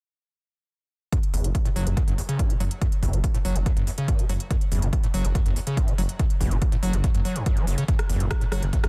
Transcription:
1.12 1.18 F#2 medium
1.12 kick loud
1.12 closed hi-hat medium
1.23 closed hi-hat medium
1.34 1.42 F#1 loud
1.34 1.46 E2 medium
1.34 open hi-hat loud
1.44 1.52 F#1 loud
1.44 1.50 C#3 loud
1.44 closed hi-hat medium
1.55 kick loud
1.55 closed hi-hat medium
1.65 1.69 A2 loud
1.65 closed hi-hat medium
1.76 1.84 F#1 loud
1.76 1.88 F#3 loud
1.76 open hi-hat loud
1.86 1.95 F#1 medium
1.86 1.90 F#2 medium
1.86 closed hi-hat medium
1.97 2.03 F#2 medium
1.97 kick loud
1.97 closed hi-hat medium
2.07 2.16 F#1 medium
2.07 2.13 F#2 loud
2.07 closed hi-hat medium
2.18 2.22 E2 medium
2.18 open hi-hat loud
2.29 2.41 C#3 loud
2.29 closed hi-hat medium
2.39 2.51 F#2 medium
2.39 kick loud
2.39 closed hi-hat medium
2.50 2.56 C#3 medium
2.50 closed hi-hat medium
2.60 2.69 F#1 medium
2.60 2.64 F#3 loud
2.60 open hi-hat loud
2.71 closed hi-hat medium
2.81 2.87 F#2 loud
2.81 kick loud
2.81 closed hi-hat medium
2.92 closed hi-hat medium
3.02 3.11 F#1 loud
3.02 3.15 E2 medium
3.02 kick medium
3.02 open hi-hat loud
3.13 3.21 F#1 loud
3.13 3.19 C#3 loud
3.13 closed hi-hat medium
3.24 kick loud
3.24 closed hi-hat medium
3.34 3.38 A2 loud
3.34 closed hi-hat medium
3.45 3.53 F#1 medium
3.45 3.57 F#3 loud
3.45 open hi-hat loud
3.56 3.64 F#1 medium
3.56 3.59 F#2 medium
3.56 closed hi-hat medium
3.66 3.72 F#2 medium
3.66 kick loud
3.66 closed hi-hat medium
3.77 3.85 F#1 medium
3.77 3.83 F#2 loud
3.77 closed hi-hat medium
3.87 3.91 E2 medium
3.87 open hi-hat loud
3.98 4.10 C#3 loud
3.98 closed hi-hat medium
4.08 4.20 F#2 medium
4.08 kick loud
4.08 closed hi-hat medium
4.19 4.25 C#3 medium
4.19 closed hi-hat medium
4.29 4.38 F#1 medium
4.29 4.33 F#3 medium
4.29 open hi-hat loud
4.40 closed hi-hat medium
4.51 4.56 F#2 loud
4.51 kick loud
4.51 closed hi-hat medium
4.61 closed hi-hat medium
4.72 4.80 F#1 medium
4.72 4.84 E2 medium
4.72 open hi-hat loud
4.82 4.90 F#1 loud
4.82 4.88 C#3 loud
4.82 closed hi-hat medium
4.93 kick loud
4.93 closed hi-hat medium
5.04 5.07 A2 loud
5.04 closed hi-hat medium
5.14 5.22 F#1 medium
5.14 5.26 F#3 loud
5.14 open hi-hat loud
5.25 5.33 F#1 medium
5.25 5.28 F#2 medium
5.25 closed hi-hat medium
5.35 5.41 F#2 medium
5.35 kick loud
5.35 closed hi-hat medium
5.46 5.54 F#1 loud
5.46 5.51 F#2 loud
5.46 closed hi-hat soft
5.56 5.60 E2 medium
5.56 open hi-hat loud
5.67 5.79 C#3 loud
5.67 closed hi-hat medium
5.77 5.89 F#2 medium
5.77 kick loud
5.77 closed hi-hat medium
5.88 5.94 C#3 medium
5.88 closed hi-hat medium
5.98 6.07 F#1 medium
5.98 6.02 F#3 loud
5.98 open hi-hat loud
6.09 closed hi-hat soft
6.19 6.25 F#2 loud
6.19 kick loud
6.19 closed hi-hat medium
6.30 closed hi-hat medium
6.40 6.49 F#1 loud
6.40 6.53 E2 medium
6.40 kick medium
6.40 open hi-hat loud
6.51 6.59 F#1 medium
6.51 6.57 C#3 loud
6.51 closed hi-hat medium
6.62 kick loud
6.62 closed hi-hat medium
6.72 6.76 A2 loud
6.72 closed hi-hat medium
6.83 6.91 F#1 medium
6.83 6.95 F#3 loud
6.83 open hi-hat loud
6.93 7.02 F#1 loud
6.93 6.97 F#2 medium
6.93 closed hi-hat medium
7.04 7.10 F#2 loud
7.04 kick loud
7.04 closed hi-hat medium
7.15 7.23 F#1 loud
7.15 7.20 F#2 loud
7.15 closed hi-hat soft
7.25 7.37 F#3 medium
7.25 open hi-hat loud
7.36 7.44 F#2 medium
7.36 closed hi-hat soft
7.46 7.58 F#2 medium
7.46 kick loud
7.46 closed hi-hat medium
7.57 7.66 F#3 loud
7.57 closed hi-hat soft
7.67 7.76 F#1 medium
7.67 7.76 F#2 medium
7.67 open hi-hat loud
7.78 7.84 C#3 loud
7.78 closed hi-hat medium
7.88 7.94 F#2 loud
7.88 kick loud
7.88 closed hi-hat medium
7.99 cross-stick medium
7.99 closed hi-hat soft
8.10 8.18 F#1 loud
8.10 8.22 E2 medium
8.10 open hi-hat loud
8.20 8.28 F#1 medium
8.20 8.26 C#3 loud
8.20 closed hi-hat medium
8.31 kick loud
8.31 cross-stick loud
8.31 closed hi-hat medium
8.41 8.45 A2 loud
8.41 closed hi-hat soft
8.52 8.60 F#1 loud
8.52 8.64 F#3 loud
8.52 cross-stick medium
8.52 open hi-hat loud
8.62 8.71 F#1 medium
8.62 8.66 F#2 medium
8.62 closed hi-hat soft
8.73 8.79 F#2 loud
8.73 kick loud
8.73 closed hi-hat medium
8.84 8.89 F#1 loud
8.84 8.89 F#2 loud
8.84 cross-stick medium
8.84 closed hi-hat medium

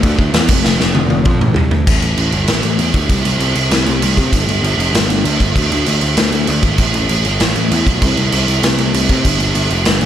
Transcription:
0.03 0.16 D2 loud
0.03 kick loud
0.03 crash medium
0.19 0.31 D2 medium
0.19 kick medium
0.34 0.46 E2 loud
0.34 snare loud
0.34 crash medium
0.48 0.62 F1 medium
0.48 kick loud
0.48 crash loud
0.64 0.77 F1 loud
0.64 snare medium
0.80 0.92 F1 medium
0.80 snare medium
0.95 1.08 F1 medium
0.95 high tom medium
1.10 1.23 F1 medium
1.10 high tom medium
1.25 1.38 F2 loud
1.25 kick loud
1.25 mid tom loud
1.41 1.54 A1 medium
1.41 mid tom medium
1.56 1.68 C2 loud
1.56 floor tom loud
1.71 1.84 D2 medium
1.71 floor tom loud
1.87 2.01 A1 medium
1.87 kick loud
1.87 crash loud
1.87 crash medium
2.02 2.16 A1 medium
2.02 crash medium
2.17 2.32 A1 medium
2.17 crash medium
2.32 2.48 G1 medium
2.32 crash medium
2.48 2.63 A1 medium
2.48 snare loud
2.48 crash medium
2.63 2.78 A1 medium
2.63 crash medium
2.79 2.94 E2 medium
2.79 crash medium
2.94 3.09 D2 medium
2.94 kick medium
2.94 crash medium
3.09 3.24 C2 medium
3.09 kick loud
3.09 crash medium
3.25 3.39 C2 medium
3.25 crash medium
3.40 3.55 C2 medium
3.40 crash medium
3.55 3.70 C2 medium
3.55 crash medium
3.71 3.86 C2 medium
3.71 snare loud
3.71 crash medium
3.86 4.02 C2 medium
3.86 crash medium
4.02 4.17 C2 loud
4.02 crash medium
4.17 4.32 C3 medium
4.17 kick medium
4.17 crash medium
4.32 4.47 G1 medium
4.32 kick loud
4.32 crash medium
4.47 4.62 G1 medium
4.47 crash medium
4.62 4.77 G1 medium
4.62 crash medium
4.78 4.92 F1 medium
4.78 crash medium
4.93 5.08 G1 medium
4.93 snare loud
4.93 crash medium
5.09 5.24 G1 medium
5.09 crash medium
5.24 5.39 D2 loud
5.24 crash medium
5.40 5.55 G1 medium
5.40 kick medium
5.40 crash medium
5.56 5.71 D2 loud
5.56 kick loud
5.56 crash medium
5.72 5.86 D2 medium
5.72 crash medium
5.86 6.02 D2 medium
5.86 crash medium
6.01 6.17 D2 medium
6.01 crash medium
6.17 6.32 D2 medium
6.17 snare loud
6.17 crash medium
6.32 6.47 D2 medium
6.32 crash medium
6.47 6.62 D2 loud
6.47 crash medium
6.63 6.78 G#1 medium
6.63 kick medium
6.63 crash medium
6.78 6.93 A1 loud
6.78 kick loud
6.78 crash medium
6.94 7.09 A1 medium
6.94 crash medium
7.09 7.24 A1 medium
7.09 crash medium
7.25 7.40 G1 medium
7.25 crash medium
7.40 7.55 A1 medium
7.40 snare loud
7.40 crash medium
7.56 7.71 A1 medium
7.56 crash medium
7.72 7.86 E2 loud
7.72 crash medium
7.86 8.01 B1 medium
7.86 kick medium
7.86 crash medium
8.02 8.17 C2 loud
8.02 kick loud
8.02 crash medium
8.17 8.32 C2 medium
8.17 crash medium
8.32 8.47 C2 medium
8.32 crash medium
8.48 8.62 C2 medium
8.48 crash medium
8.63 8.78 C2 loud
8.63 snare loud
8.63 crash medium
8.79 8.93 C2 medium
8.79 crash medium
8.94 9.09 C2 loud
8.94 crash medium
9.09 9.24 C3 medium
9.09 kick medium
9.09 crash medium
9.25 9.39 G1 loud
9.25 kick loud
9.25 crash medium
9.39 9.54 G1 medium
9.39 crash medium
9.55 9.70 G1 medium
9.55 crash medium
9.70 9.86 F1 medium
9.70 crash medium
9.85 10.01 G1 loud
9.85 snare loud
9.85 crash medium
10.01 10.06 G1 medium
10.01 crash medium

